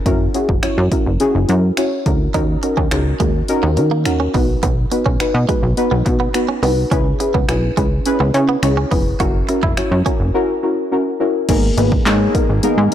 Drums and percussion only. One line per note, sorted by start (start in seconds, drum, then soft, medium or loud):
0.06 kick loud
0.06 closed hi-hat medium
0.34 closed hi-hat medium
0.49 kick medium
0.63 finger snap loud
0.63 closed hi-hat medium
0.92 kick loud
0.92 closed hi-hat medium
1.20 closed hi-hat medium
1.49 closed hi-hat medium
1.77 finger snap loud
1.77 closed hi-hat loud
2.06 kick medium
2.06 closed hi-hat medium
2.34 kick loud
2.34 closed hi-hat medium
2.63 closed hi-hat medium
2.77 kick medium
2.91 finger snap loud
2.91 closed hi-hat medium
3.20 kick medium
3.20 closed hi-hat medium
3.48 closed hi-hat medium
3.77 closed hi-hat medium
4.05 finger snap loud
4.05 closed hi-hat loud
4.34 kick loud
4.34 open hi-hat medium
4.63 kick loud
4.63 closed hi-hat medium
4.91 closed hi-hat medium
5.06 kick medium
5.20 finger snap loud
5.20 closed hi-hat medium
5.49 kick loud
5.49 closed hi-hat medium
5.77 closed hi-hat medium
6.06 kick loud
6.06 closed hi-hat medium
6.34 finger snap loud
6.34 closed hi-hat loud
6.63 open hi-hat medium
6.92 kick loud
6.92 closed hi-hat medium
7.20 closed hi-hat medium
7.35 kick medium
7.49 finger snap loud
7.49 closed hi-hat medium
7.77 kick medium
7.77 closed hi-hat medium
8.05 closed hi-hat medium
8.34 closed hi-hat medium
8.63 finger snap loud
8.63 closed hi-hat loud
8.92 kick loud
8.92 open hi-hat medium
9.20 kick loud
9.20 closed hi-hat medium
9.49 closed hi-hat medium
9.63 kick medium
9.77 finger snap loud
9.77 closed hi-hat medium
10.06 kick loud
10.06 closed hi-hat medium
11.49 kick loud
11.49 closed hi-hat loud
11.49 crash loud
11.78 closed hi-hat medium
11.92 kick medium
12.06 snare loud
12.06 clap loud
12.06 closed hi-hat medium
12.35 kick loud
12.35 closed hi-hat medium
12.63 closed hi-hat loud